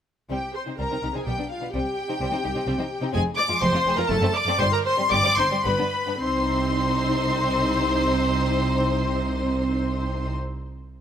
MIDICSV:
0, 0, Header, 1, 6, 480
1, 0, Start_track
1, 0, Key_signature, -3, "minor"
1, 0, Tempo, 473186
1, 313, Time_signature, 3, 2, 24, 8
1, 3669, Tempo, 497100
1, 5109, Tempo, 559180
1, 10174, End_track
2, 0, Start_track
2, 0, Title_t, "Violin section"
2, 0, Program_c, 0, 48
2, 316, Note_on_c, 0, 79, 51
2, 542, Note_off_c, 0, 79, 0
2, 559, Note_on_c, 0, 84, 49
2, 640, Note_off_c, 0, 84, 0
2, 799, Note_on_c, 0, 82, 54
2, 1157, Note_off_c, 0, 82, 0
2, 1166, Note_on_c, 0, 80, 47
2, 1279, Note_on_c, 0, 79, 59
2, 1286, Note_off_c, 0, 80, 0
2, 1518, Note_off_c, 0, 79, 0
2, 1519, Note_on_c, 0, 77, 54
2, 1756, Note_off_c, 0, 77, 0
2, 1756, Note_on_c, 0, 79, 74
2, 3154, Note_off_c, 0, 79, 0
2, 3180, Note_on_c, 0, 80, 89
2, 3262, Note_off_c, 0, 80, 0
2, 3419, Note_on_c, 0, 86, 94
2, 3660, Note_off_c, 0, 86, 0
2, 3665, Note_on_c, 0, 84, 87
2, 4016, Note_on_c, 0, 82, 87
2, 4018, Note_off_c, 0, 84, 0
2, 4132, Note_on_c, 0, 81, 97
2, 4136, Note_off_c, 0, 82, 0
2, 4373, Note_off_c, 0, 81, 0
2, 4376, Note_on_c, 0, 86, 98
2, 4613, Note_on_c, 0, 84, 107
2, 4617, Note_off_c, 0, 86, 0
2, 4736, Note_off_c, 0, 84, 0
2, 4745, Note_on_c, 0, 82, 82
2, 4793, Note_off_c, 0, 82, 0
2, 4865, Note_on_c, 0, 84, 98
2, 5107, Note_off_c, 0, 84, 0
2, 5116, Note_on_c, 0, 86, 115
2, 5335, Note_on_c, 0, 84, 96
2, 5340, Note_off_c, 0, 86, 0
2, 5570, Note_off_c, 0, 84, 0
2, 5576, Note_on_c, 0, 83, 79
2, 6057, Note_off_c, 0, 83, 0
2, 6058, Note_on_c, 0, 84, 86
2, 9597, Note_off_c, 0, 84, 0
2, 10174, End_track
3, 0, Start_track
3, 0, Title_t, "Viola section"
3, 0, Program_c, 1, 48
3, 314, Note_on_c, 1, 67, 48
3, 540, Note_off_c, 1, 67, 0
3, 561, Note_on_c, 1, 72, 46
3, 799, Note_on_c, 1, 70, 45
3, 803, Note_off_c, 1, 72, 0
3, 1157, Note_off_c, 1, 70, 0
3, 1160, Note_on_c, 1, 68, 46
3, 1281, Note_off_c, 1, 68, 0
3, 1283, Note_on_c, 1, 67, 48
3, 1364, Note_off_c, 1, 67, 0
3, 1523, Note_on_c, 1, 65, 47
3, 1758, Note_off_c, 1, 65, 0
3, 1762, Note_on_c, 1, 67, 59
3, 3158, Note_off_c, 1, 67, 0
3, 3181, Note_on_c, 1, 68, 82
3, 3262, Note_off_c, 1, 68, 0
3, 3423, Note_on_c, 1, 74, 81
3, 3504, Note_off_c, 1, 74, 0
3, 3668, Note_on_c, 1, 72, 76
3, 4012, Note_off_c, 1, 72, 0
3, 4015, Note_on_c, 1, 70, 82
3, 4136, Note_off_c, 1, 70, 0
3, 4138, Note_on_c, 1, 69, 84
3, 4373, Note_on_c, 1, 74, 88
3, 4376, Note_off_c, 1, 69, 0
3, 4609, Note_on_c, 1, 72, 88
3, 4615, Note_off_c, 1, 74, 0
3, 4660, Note_off_c, 1, 72, 0
3, 4739, Note_on_c, 1, 70, 75
3, 4859, Note_off_c, 1, 70, 0
3, 4862, Note_on_c, 1, 72, 88
3, 4939, Note_off_c, 1, 72, 0
3, 5111, Note_on_c, 1, 74, 85
3, 5334, Note_off_c, 1, 74, 0
3, 5340, Note_on_c, 1, 72, 81
3, 5409, Note_off_c, 1, 72, 0
3, 5573, Note_on_c, 1, 71, 70
3, 6046, Note_off_c, 1, 71, 0
3, 6059, Note_on_c, 1, 60, 74
3, 9597, Note_off_c, 1, 60, 0
3, 10174, End_track
4, 0, Start_track
4, 0, Title_t, "Violin section"
4, 0, Program_c, 2, 48
4, 303, Note_on_c, 2, 55, 45
4, 309, Note_on_c, 2, 60, 47
4, 354, Note_off_c, 2, 55, 0
4, 358, Note_off_c, 2, 60, 0
4, 673, Note_on_c, 2, 60, 32
4, 673, Note_on_c, 2, 63, 38
4, 723, Note_off_c, 2, 60, 0
4, 723, Note_off_c, 2, 63, 0
4, 790, Note_on_c, 2, 60, 48
4, 793, Note_on_c, 2, 55, 44
4, 841, Note_off_c, 2, 60, 0
4, 843, Note_off_c, 2, 55, 0
4, 925, Note_on_c, 2, 60, 35
4, 926, Note_on_c, 2, 63, 33
4, 973, Note_off_c, 2, 60, 0
4, 974, Note_off_c, 2, 63, 0
4, 1038, Note_on_c, 2, 67, 40
4, 1039, Note_on_c, 2, 63, 36
4, 1087, Note_off_c, 2, 67, 0
4, 1088, Note_off_c, 2, 63, 0
4, 1152, Note_on_c, 2, 60, 35
4, 1156, Note_on_c, 2, 63, 38
4, 1203, Note_off_c, 2, 60, 0
4, 1206, Note_off_c, 2, 63, 0
4, 1277, Note_on_c, 2, 59, 51
4, 1281, Note_on_c, 2, 55, 45
4, 1327, Note_off_c, 2, 59, 0
4, 1330, Note_off_c, 2, 55, 0
4, 1402, Note_on_c, 2, 59, 38
4, 1405, Note_on_c, 2, 62, 41
4, 1451, Note_off_c, 2, 59, 0
4, 1453, Note_off_c, 2, 62, 0
4, 1642, Note_on_c, 2, 62, 36
4, 1644, Note_on_c, 2, 59, 42
4, 1690, Note_off_c, 2, 62, 0
4, 1692, Note_off_c, 2, 59, 0
4, 1760, Note_on_c, 2, 60, 57
4, 1762, Note_on_c, 2, 55, 58
4, 1808, Note_off_c, 2, 60, 0
4, 1810, Note_off_c, 2, 55, 0
4, 2112, Note_on_c, 2, 63, 48
4, 2114, Note_on_c, 2, 60, 47
4, 2161, Note_off_c, 2, 63, 0
4, 2162, Note_off_c, 2, 60, 0
4, 2241, Note_on_c, 2, 55, 66
4, 2241, Note_on_c, 2, 60, 64
4, 2288, Note_off_c, 2, 55, 0
4, 2288, Note_off_c, 2, 60, 0
4, 2350, Note_on_c, 2, 63, 47
4, 2352, Note_on_c, 2, 60, 45
4, 2399, Note_off_c, 2, 63, 0
4, 2400, Note_off_c, 2, 60, 0
4, 2469, Note_on_c, 2, 63, 51
4, 2470, Note_on_c, 2, 67, 50
4, 2517, Note_off_c, 2, 63, 0
4, 2519, Note_off_c, 2, 67, 0
4, 2588, Note_on_c, 2, 63, 54
4, 2590, Note_on_c, 2, 60, 48
4, 2636, Note_off_c, 2, 63, 0
4, 2638, Note_off_c, 2, 60, 0
4, 2700, Note_on_c, 2, 55, 70
4, 2702, Note_on_c, 2, 60, 64
4, 2750, Note_off_c, 2, 55, 0
4, 2752, Note_off_c, 2, 60, 0
4, 2824, Note_on_c, 2, 63, 60
4, 2828, Note_on_c, 2, 60, 52
4, 2872, Note_off_c, 2, 63, 0
4, 2876, Note_off_c, 2, 60, 0
4, 3057, Note_on_c, 2, 60, 54
4, 3058, Note_on_c, 2, 63, 57
4, 3107, Note_off_c, 2, 60, 0
4, 3108, Note_off_c, 2, 63, 0
4, 3174, Note_on_c, 2, 60, 87
4, 3176, Note_on_c, 2, 56, 78
4, 3225, Note_off_c, 2, 60, 0
4, 3226, Note_off_c, 2, 56, 0
4, 3539, Note_on_c, 2, 65, 56
4, 3543, Note_on_c, 2, 56, 59
4, 3590, Note_off_c, 2, 65, 0
4, 3593, Note_off_c, 2, 56, 0
4, 3657, Note_on_c, 2, 56, 76
4, 3662, Note_on_c, 2, 60, 81
4, 3707, Note_off_c, 2, 56, 0
4, 3710, Note_off_c, 2, 60, 0
4, 3782, Note_on_c, 2, 56, 54
4, 3784, Note_on_c, 2, 65, 52
4, 3830, Note_off_c, 2, 56, 0
4, 3831, Note_off_c, 2, 65, 0
4, 3905, Note_on_c, 2, 60, 67
4, 3908, Note_on_c, 2, 68, 62
4, 3952, Note_off_c, 2, 60, 0
4, 3954, Note_off_c, 2, 68, 0
4, 4020, Note_on_c, 2, 56, 59
4, 4024, Note_on_c, 2, 65, 59
4, 4067, Note_off_c, 2, 56, 0
4, 4070, Note_off_c, 2, 65, 0
4, 4135, Note_on_c, 2, 57, 85
4, 4139, Note_off_c, 2, 57, 0
4, 4139, Note_on_c, 2, 57, 84
4, 4186, Note_off_c, 2, 57, 0
4, 4252, Note_on_c, 2, 60, 69
4, 4253, Note_on_c, 2, 57, 65
4, 4301, Note_off_c, 2, 60, 0
4, 4302, Note_off_c, 2, 57, 0
4, 4499, Note_on_c, 2, 57, 66
4, 4499, Note_on_c, 2, 60, 69
4, 4547, Note_off_c, 2, 57, 0
4, 4547, Note_off_c, 2, 60, 0
4, 4615, Note_on_c, 2, 55, 83
4, 4616, Note_off_c, 2, 55, 0
4, 4616, Note_on_c, 2, 55, 82
4, 4665, Note_off_c, 2, 55, 0
4, 4981, Note_on_c, 2, 60, 64
4, 4985, Note_on_c, 2, 55, 65
4, 5032, Note_off_c, 2, 60, 0
4, 5035, Note_off_c, 2, 55, 0
4, 5099, Note_on_c, 2, 55, 87
4, 5100, Note_off_c, 2, 55, 0
4, 5100, Note_on_c, 2, 55, 92
4, 5148, Note_off_c, 2, 55, 0
4, 5214, Note_on_c, 2, 55, 58
4, 5215, Note_on_c, 2, 60, 57
4, 5262, Note_off_c, 2, 55, 0
4, 5262, Note_off_c, 2, 60, 0
4, 5336, Note_on_c, 2, 63, 67
4, 5340, Note_on_c, 2, 60, 59
4, 5383, Note_off_c, 2, 63, 0
4, 5386, Note_off_c, 2, 60, 0
4, 5451, Note_on_c, 2, 55, 59
4, 5452, Note_on_c, 2, 60, 56
4, 5499, Note_off_c, 2, 55, 0
4, 5499, Note_off_c, 2, 60, 0
4, 5568, Note_on_c, 2, 59, 77
4, 5569, Note_on_c, 2, 55, 72
4, 5617, Note_off_c, 2, 55, 0
4, 5617, Note_off_c, 2, 59, 0
4, 5687, Note_on_c, 2, 59, 52
4, 5690, Note_on_c, 2, 62, 49
4, 5737, Note_off_c, 2, 59, 0
4, 5739, Note_off_c, 2, 62, 0
4, 5933, Note_on_c, 2, 59, 58
4, 5937, Note_on_c, 2, 62, 48
4, 5981, Note_off_c, 2, 59, 0
4, 5985, Note_off_c, 2, 62, 0
4, 6049, Note_on_c, 2, 72, 78
4, 6050, Note_on_c, 2, 63, 74
4, 9592, Note_off_c, 2, 72, 0
4, 9593, Note_off_c, 2, 63, 0
4, 10174, End_track
5, 0, Start_track
5, 0, Title_t, "Cello section"
5, 0, Program_c, 3, 48
5, 311, Note_on_c, 3, 48, 47
5, 360, Note_off_c, 3, 48, 0
5, 678, Note_on_c, 3, 48, 30
5, 727, Note_off_c, 3, 48, 0
5, 803, Note_on_c, 3, 48, 46
5, 852, Note_off_c, 3, 48, 0
5, 929, Note_on_c, 3, 48, 34
5, 976, Note_off_c, 3, 48, 0
5, 1046, Note_on_c, 3, 48, 36
5, 1094, Note_off_c, 3, 48, 0
5, 1165, Note_on_c, 3, 48, 36
5, 1213, Note_off_c, 3, 48, 0
5, 1282, Note_on_c, 3, 47, 52
5, 1331, Note_off_c, 3, 47, 0
5, 1400, Note_on_c, 3, 47, 38
5, 1449, Note_off_c, 3, 47, 0
5, 1639, Note_on_c, 3, 47, 35
5, 1688, Note_off_c, 3, 47, 0
5, 1760, Note_on_c, 3, 48, 57
5, 1809, Note_off_c, 3, 48, 0
5, 2120, Note_on_c, 3, 48, 38
5, 2167, Note_off_c, 3, 48, 0
5, 2231, Note_on_c, 3, 48, 61
5, 2280, Note_off_c, 3, 48, 0
5, 2354, Note_on_c, 3, 48, 48
5, 2402, Note_off_c, 3, 48, 0
5, 2471, Note_on_c, 3, 48, 49
5, 2520, Note_off_c, 3, 48, 0
5, 2585, Note_on_c, 3, 48, 49
5, 2634, Note_off_c, 3, 48, 0
5, 2702, Note_on_c, 3, 48, 73
5, 2751, Note_off_c, 3, 48, 0
5, 2821, Note_on_c, 3, 48, 53
5, 2871, Note_off_c, 3, 48, 0
5, 3059, Note_on_c, 3, 48, 50
5, 3109, Note_off_c, 3, 48, 0
5, 3177, Note_on_c, 3, 41, 84
5, 3227, Note_off_c, 3, 41, 0
5, 3539, Note_on_c, 3, 41, 53
5, 3590, Note_off_c, 3, 41, 0
5, 3665, Note_on_c, 3, 41, 82
5, 3712, Note_off_c, 3, 41, 0
5, 3780, Note_on_c, 3, 41, 58
5, 3828, Note_off_c, 3, 41, 0
5, 3897, Note_on_c, 3, 41, 61
5, 3945, Note_off_c, 3, 41, 0
5, 4015, Note_on_c, 3, 41, 58
5, 4063, Note_off_c, 3, 41, 0
5, 4133, Note_on_c, 3, 42, 86
5, 4181, Note_off_c, 3, 42, 0
5, 4249, Note_on_c, 3, 42, 59
5, 4298, Note_off_c, 3, 42, 0
5, 4487, Note_on_c, 3, 42, 57
5, 4537, Note_off_c, 3, 42, 0
5, 4609, Note_on_c, 3, 43, 89
5, 4659, Note_off_c, 3, 43, 0
5, 4980, Note_on_c, 3, 43, 53
5, 5031, Note_off_c, 3, 43, 0
5, 5109, Note_on_c, 3, 43, 80
5, 5154, Note_off_c, 3, 43, 0
5, 5223, Note_on_c, 3, 43, 56
5, 5269, Note_off_c, 3, 43, 0
5, 5337, Note_on_c, 3, 43, 55
5, 5384, Note_off_c, 3, 43, 0
5, 5456, Note_on_c, 3, 43, 55
5, 5503, Note_off_c, 3, 43, 0
5, 5572, Note_on_c, 3, 43, 74
5, 5620, Note_off_c, 3, 43, 0
5, 5692, Note_on_c, 3, 43, 50
5, 5741, Note_off_c, 3, 43, 0
5, 5940, Note_on_c, 3, 43, 45
5, 5987, Note_off_c, 3, 43, 0
5, 6057, Note_on_c, 3, 48, 75
5, 9596, Note_off_c, 3, 48, 0
5, 10174, End_track
6, 0, Start_track
6, 0, Title_t, "Double bass section"
6, 0, Program_c, 4, 48
6, 313, Note_on_c, 4, 36, 46
6, 362, Note_off_c, 4, 36, 0
6, 800, Note_on_c, 4, 36, 44
6, 849, Note_off_c, 4, 36, 0
6, 1042, Note_on_c, 4, 36, 36
6, 1091, Note_off_c, 4, 36, 0
6, 1283, Note_on_c, 4, 35, 47
6, 1331, Note_off_c, 4, 35, 0
6, 1766, Note_on_c, 4, 36, 55
6, 1813, Note_off_c, 4, 36, 0
6, 2237, Note_on_c, 4, 36, 58
6, 2285, Note_off_c, 4, 36, 0
6, 2479, Note_on_c, 4, 36, 52
6, 2525, Note_off_c, 4, 36, 0
6, 2713, Note_on_c, 4, 36, 64
6, 2760, Note_off_c, 4, 36, 0
6, 3190, Note_on_c, 4, 29, 80
6, 3237, Note_off_c, 4, 29, 0
6, 3670, Note_on_c, 4, 29, 81
6, 3716, Note_off_c, 4, 29, 0
6, 3898, Note_on_c, 4, 29, 62
6, 3946, Note_off_c, 4, 29, 0
6, 4133, Note_on_c, 4, 30, 83
6, 4181, Note_off_c, 4, 30, 0
6, 4610, Note_on_c, 4, 31, 85
6, 4660, Note_off_c, 4, 31, 0
6, 5109, Note_on_c, 4, 31, 75
6, 5154, Note_off_c, 4, 31, 0
6, 5339, Note_on_c, 4, 31, 59
6, 5385, Note_off_c, 4, 31, 0
6, 5572, Note_on_c, 4, 31, 73
6, 5620, Note_off_c, 4, 31, 0
6, 6058, Note_on_c, 4, 36, 73
6, 9597, Note_off_c, 4, 36, 0
6, 10174, End_track
0, 0, End_of_file